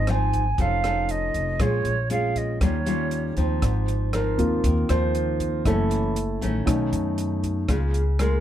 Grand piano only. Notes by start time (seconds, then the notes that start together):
4.15 A#4
4.38 A#3 C4 F4
4.90 C5
5.65 A3 E4 A4
6.66 A3 C#4 D#4
8.21 A#4